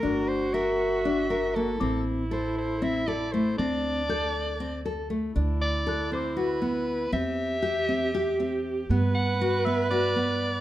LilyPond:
<<
  \new Staff \with { instrumentName = "Celesta" } { \time 7/8 \key d \mixolydian \tempo 4 = 118 r2. r8 | d'''2.~ d'''8 | r4 g'''2~ g'''8~ | g'''8 r8 fis'''8 d'''2~ |
d'''8 r2. | r4. e'''2 | }
  \new Staff \with { instrumentName = "Soprano saxophone" } { \time 7/8 \key d \mixolydian bes'8 c''8 e''2 a'8~ | a'8 r8 c''8 c''8 e''8 d''8 c''8 | d''2~ d''8 r4 | r8 d''4 c''8 b'4. |
e''2. r8 | r8 fis''4 e''8 d''4. | }
  \new Staff \with { instrumentName = "Viola" } { \time 7/8 \key d \mixolydian fis'2.~ fis'8 | e'2.~ e'8 | d'2 r4. | e'2.~ e'8 |
g'2.~ g'8 | b'2.~ b'8 | }
  \new Staff \with { instrumentName = "Nylon-string guitar" } { \time 7/8 \key d \mixolydian d'4 bes'4 d'8 bes'8 bes8 | c'4 a'4 c'8 a'8 a8 | c'4 a'4 c'8 a'8 a8 | d'4 a'8 c'8 fis'8 b4 |
c'4 g'8 c'8 g'8 c'4 | b4 fis'8 b8 fis'8 b4 | }
  \new Staff \with { instrumentName = "Upright bass" } { \clef bass \time 7/8 \key d \mixolydian g,,2.~ g,,8 | a,,2.~ a,,8 | d,2.~ d,8 | d,2.~ d,8 |
e,2.~ e,8 | g,2.~ g,8 | }
>>